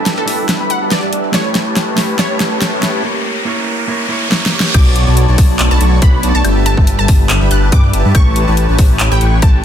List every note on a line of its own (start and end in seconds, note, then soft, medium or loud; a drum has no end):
0.00 0.16 G1 medium
0.00 0.15 G3 medium
0.00 1.32 G3 medium
0.00 0.25 D4 medium
0.00 0.25 E4 medium
0.00 1.32 E4 medium
0.00 0.15 G4 medium
0.00 0.12 A4 medium
0.00 0.25 A4 medium
0.00 1.32 A4 medium
0.00 0.15 B4 medium
0.00 0.26 B4 medium
0.00 1.32 B4 medium
0.00 0.15 E5 medium
0.00 0.15 A5 loud
0.00 riser medium
0.06 snare medium
0.06 closed hi-hat medium
0.18 0.26 G1 medium
0.18 0.26 G3 medium
0.18 0.26 G4 medium
0.18 0.44 A4 medium
0.18 0.26 B4 medium
0.18 0.26 E5 medium
0.18 0.26 A5 medium
0.25 0.47 G1 medium
0.25 0.28 G3 medium
0.25 0.47 G3 medium
0.25 1.31 D4 medium
0.25 1.32 E4 medium
0.25 0.47 G4 medium
0.25 1.32 A4 medium
0.25 0.47 B4 medium
0.25 0.47 E5 medium
0.25 0.47 A5 loud
0.25 open hi-hat medium
0.30 1.33 B4 loud
0.49 0.58 G1 medium
0.49 0.58 G3 medium
0.49 0.58 G4 medium
0.49 0.58 B4 medium
0.49 0.58 E5 medium
0.49 0.58 A5 medium
0.49 snare medium
0.49 closed hi-hat medium
0.60 0.79 G1 medium
0.60 0.79 G3 medium
0.60 0.79 G4 medium
0.60 0.79 B4 medium
0.60 0.79 E5 medium
0.60 0.79 B5 loud
0.70 0.88 F#5 medium
0.70 closed hi-hat medium
0.82 1.01 G1 medium
0.82 1.00 G3 medium
0.82 1.00 G4 medium
0.82 1.00 B4 medium
0.82 1.00 E5 medium
0.82 1.00 A5 medium
0.91 1.28 D5 medium
0.91 snare medium
0.91 closed hi-hat medium
1.03 1.14 G2 loud
1.03 1.10 G3 medium
1.03 1.10 G4 medium
1.03 1.10 B4 medium
1.03 1.10 E5 medium
1.03 1.10 A5 medium
1.13 1.32 G1 medium
1.13 1.32 G3 medium
1.13 1.32 G4 medium
1.13 1.32 B4 medium
1.13 1.32 E5 medium
1.13 1.32 A5 medium
1.13 closed hi-hat medium
1.32 1.64 A1 loud
1.32 1.94 A3 medium
1.32 1.64 A3 medium
1.32 3.03 A3 medium
1.32 3.03 C#4 medium
1.32 1.95 E4 medium
1.32 1.64 G4 medium
1.32 1.95 G4 medium
1.32 3.03 G4 medium
1.32 1.64 B4 medium
1.32 1.96 B4 medium
1.32 1.64 C#5 medium
1.32 1.61 C#5 medium
1.32 1.64 A5 medium
1.32 snare medium
1.32 closed hi-hat medium
1.36 1.96 C#5 medium
1.55 snare medium
1.55 closed hi-hat medium
1.67 1.86 A1 medium
1.67 1.85 A3 medium
1.67 1.85 G4 medium
1.67 1.85 B4 medium
1.67 1.85 C#5 medium
1.67 1.85 A5 medium
1.76 snare medium
1.76 closed hi-hat medium
1.88 1.96 A1 medium
1.88 1.96 A3 medium
1.88 1.96 G4 medium
1.88 1.96 B4 medium
1.88 1.96 C#5 medium
1.88 1.96 A5 medium
1.96 2.17 A1 loud
1.96 2.16 A3 medium
1.96 2.17 A3 medium
1.96 2.17 E4 medium
1.96 2.17 G4 medium
1.96 2.17 B4 medium
1.96 2.18 B4 medium
1.96 2.17 C#5 medium
1.96 2.17 A5 medium
1.96 snare medium
1.96 open hi-hat medium
2.00 2.18 C#5 loud
2.17 2.50 A1 medium
2.17 2.80 A3 medium
2.17 2.49 A3 medium
2.17 2.21 E4 medium
2.17 2.49 G4 medium
2.17 2.81 G4 medium
2.17 2.49 B4 medium
2.17 2.81 B4 medium
2.17 2.49 C#5 medium
2.17 2.46 C#5 medium
2.17 2.81 C#5 medium
2.17 2.49 A5 medium
2.17 snare medium
2.17 closed hi-hat medium
2.40 snare medium
2.40 closed hi-hat medium
2.52 2.71 A1 medium
2.52 2.70 A3 medium
2.52 2.70 G4 medium
2.52 2.70 B4 medium
2.52 2.70 C#5 medium
2.52 2.70 A5 loud
2.62 snare medium
2.62 closed hi-hat medium
2.73 2.81 A2 loud
2.73 2.81 A3 medium
2.73 2.81 G4 medium
2.73 2.81 B4 medium
2.73 2.81 C#5 medium
2.73 2.81 A5 medium
2.81 3.02 A2 loud
2.81 3.02 A3 medium
2.81 2.84 E4 medium
2.81 3.02 G4 medium
2.81 3.03 G4 medium
2.81 3.02 B4 medium
2.81 3.03 B4 medium
2.81 3.02 C#5 medium
2.81 3.03 C#5 loud
2.81 3.02 A5 loud
2.81 snare medium
2.81 closed hi-hat medium
3.02 3.44 A#3 medium
3.02 3.06 E4 medium
3.02 3.45 G4 medium
3.02 3.46 A#4 medium
3.02 3.46 C#5 medium
3.45 3.86 A#3 medium
3.45 3.87 E4 medium
3.45 3.88 A#4 medium
3.45 3.89 C#5 medium
3.87 4.07 A#3 medium
3.87 4.08 E4 medium
3.87 4.10 A#4 medium
3.91 4.10 C#5 medium
4.08 4.29 A#3 medium
4.08 4.30 E4 medium
4.08 4.31 A#4 medium
4.12 4.31 C#5 loud
4.30 4.50 A#3 medium
4.30 4.51 E4 medium
4.30 4.52 A#4 medium
4.30 snare medium
4.34 4.52 C#5 medium
4.46 snare medium
4.51 4.72 A#3 medium
4.51 4.55 E4 medium
4.51 4.73 G4 medium
4.51 4.73 A#4 medium
4.51 4.74 C#5 loud
4.60 snare loud
4.74 5.05 B1 loud
4.74 6.43 A3 medium
4.74 5.04 B3 medium
4.74 6.43 B3 medium
4.74 6.43 D4 medium
4.74 5.04 F#4 medium
4.74 5.04 C#5 medium
4.74 5.04 D5 medium
4.74 5.04 A5 loud
4.74 5.01 D6 loud
4.74 kick loud
4.74 closed hi-hat medium
4.74 crash loud
4.74 high woodblock medium
4.96 closed hi-hat medium
5.07 5.26 B1 loud
5.07 5.26 B3 medium
5.07 5.26 F#4 medium
5.07 5.26 C#5 medium
5.07 5.26 D5 medium
5.07 5.26 A5 loud
5.17 closed hi-hat medium
5.28 5.36 B1 loud
5.28 5.37 B3 medium
5.28 5.37 F#4 medium
5.28 5.37 C#5 medium
5.28 5.37 D5 medium
5.28 5.37 A5 medium
5.38 5.58 B1 loud
5.38 5.57 B3 medium
5.38 5.57 F#4 medium
5.38 5.57 C#5 medium
5.38 5.57 D5 medium
5.38 5.57 A5 loud
5.38 kick loud
5.38 open hi-hat loud
5.59 5.69 B1 loud
5.59 5.68 B3 medium
5.59 5.68 F#4 medium
5.59 5.68 C#5 medium
5.59 5.68 D5 medium
5.59 5.68 A5 medium
5.59 clap loud
5.59 closed hi-hat medium
5.71 5.79 B1 loud
5.71 5.79 B3 loud
5.71 5.79 F#4 medium
5.71 5.79 C#5 medium
5.71 5.79 D5 medium
5.71 5.97 A5 loud
5.71 5.79 B5 loud
5.81 6.00 B1 loud
5.81 6.00 B3 medium
5.81 6.00 F#4 medium
5.81 6.00 C#5 medium
5.81 6.00 D5 medium
5.81 6.00 C#6 medium
5.81 closed hi-hat medium
6.02 6.21 B1 loud
6.02 6.21 B3 medium
6.02 6.21 F#4 medium
6.02 6.21 C#5 medium
6.02 6.21 D5 medium
6.02 6.21 F#5 medium
6.02 6.29 B5 loud
6.02 kick loud
6.02 closed hi-hat medium
6.23 6.33 B1 medium
6.23 6.32 B3 medium
6.23 6.32 F#4 medium
6.23 6.32 C#5 medium
6.23 6.32 D5 medium
6.23 6.32 A5 loud
6.23 closed hi-hat medium
6.35 6.43 B1 medium
6.35 6.42 B3 medium
6.35 6.42 F#4 medium
6.35 6.42 C#5 medium
6.35 6.42 D5 medium
6.35 6.61 A5 medium
6.35 6.42 C#6 medium
6.45 6.75 G1 loud
6.45 6.75 G3 medium
6.45 8.13 G3 medium
6.45 8.13 E4 medium
6.45 6.75 G4 medium
6.45 8.13 A4 medium
6.45 6.75 B4 medium
6.45 8.13 B4 medium
6.45 6.75 E5 medium
6.45 6.75 A5 loud
6.45 closed hi-hat medium
6.45 high woodblock medium
6.66 6.93 A5 loud
6.66 closed hi-hat medium
6.77 6.96 G1 loud
6.77 6.96 G3 medium
6.77 6.96 G4 medium
6.77 6.96 B4 medium
6.77 6.96 E5 medium
6.77 6.96 A5 loud
6.77 kick medium
6.87 closed hi-hat medium
6.99 7.07 G1 medium
6.99 7.07 G3 medium
6.99 7.07 G4 medium
6.99 7.07 B4 medium
6.99 7.07 E5 medium
6.99 7.25 A5 loud
6.99 7.07 A5 medium
7.08 7.28 G1 loud
7.08 7.27 G3 medium
7.08 7.27 G4 medium
7.08 7.27 B4 medium
7.08 7.27 E5 medium
7.08 7.27 A5 loud
7.08 kick loud
7.08 open hi-hat loud
7.30 7.39 G1 loud
7.30 7.38 G3 medium
7.30 7.38 G4 medium
7.30 7.38 B4 medium
7.30 7.38 E5 medium
7.30 7.38 A5 medium
7.30 clap loud
7.30 closed hi-hat medium
7.41 7.49 G1 medium
7.41 7.49 G3 loud
7.41 7.49 G4 medium
7.41 7.49 B4 medium
7.41 7.49 E5 medium
7.41 7.49 B5 loud
7.51 7.70 G1 loud
7.51 7.70 G3 medium
7.51 7.70 G4 medium
7.51 7.70 B4 medium
7.51 7.70 E5 medium
7.51 7.70 A5 medium
7.51 7.69 F#6 medium
7.51 closed hi-hat medium
7.72 7.92 G2 loud
7.72 7.91 G3 medium
7.72 7.91 G4 medium
7.72 7.91 B4 medium
7.72 7.91 E5 medium
7.72 7.91 G5 medium
7.72 8.08 D6 loud
7.72 kick loud
7.72 closed hi-hat medium
7.93 8.03 G1 loud
7.93 8.02 G3 medium
7.93 8.02 G4 medium
7.93 8.02 B4 medium
7.93 8.02 E5 medium
7.93 8.02 A5 loud
7.93 closed hi-hat medium
8.05 8.13 G2 medium
8.05 8.12 G3 medium
8.05 8.12 G4 medium
8.05 8.12 B4 medium
8.05 8.12 E5 medium
8.05 8.12 A5 medium
8.15 8.45 A1 loud
8.15 8.45 A3 medium
8.15 9.65 A3 medium
8.15 9.65 C#4 medium
8.15 8.45 G4 medium
8.15 9.65 G4 medium
8.15 8.45 B4 medium
8.15 8.45 C#5 medium
8.15 8.45 A5 loud
8.15 8.42 C#6 loud
8.15 kick loud
8.15 closed hi-hat medium
8.15 high woodblock medium
8.36 closed hi-hat medium
8.47 8.67 A1 loud
8.47 8.66 A3 medium
8.47 8.66 G4 medium
8.47 8.66 B4 medium
8.47 8.66 C#5 medium
8.47 8.66 A5 loud
8.57 closed hi-hat medium
8.69 8.77 A1 medium
8.69 8.77 A3 medium
8.69 8.77 G4 medium
8.69 8.77 B4 medium
8.69 8.77 C#5 medium
8.69 8.77 A5 medium
8.79 8.98 A1 loud
8.79 8.98 A3 medium
8.79 8.98 G4 medium
8.79 8.98 B4 medium
8.79 8.98 C#5 medium
8.79 8.98 A5 loud
8.79 kick loud
8.79 open hi-hat medium
9.00 9.09 A1 loud
9.00 9.09 A3 medium
9.00 9.09 G4 medium
9.00 9.09 B4 medium
9.00 9.09 C#5 medium
9.00 9.09 A5 medium
9.00 clap loud
9.00 closed hi-hat medium
9.11 9.19 A1 loud
9.11 9.19 A3 loud
9.11 9.19 G4 medium
9.11 9.19 B4 medium
9.11 9.19 C#5 medium
9.11 9.38 G5 medium
9.11 9.19 B5 loud
9.21 9.41 A1 loud
9.21 9.40 A3 medium
9.21 9.40 G4 medium
9.21 9.40 B4 medium
9.21 9.40 C#5 medium
9.21 9.40 C#6 medium
9.21 closed hi-hat medium
9.42 9.62 A1 loud
9.42 9.61 A3 medium
9.42 9.61 G4 medium
9.42 9.61 B4 medium
9.42 9.61 C#5 medium
9.42 9.61 G5 medium
9.42 9.65 A5 loud
9.42 kick loud
9.42 closed hi-hat medium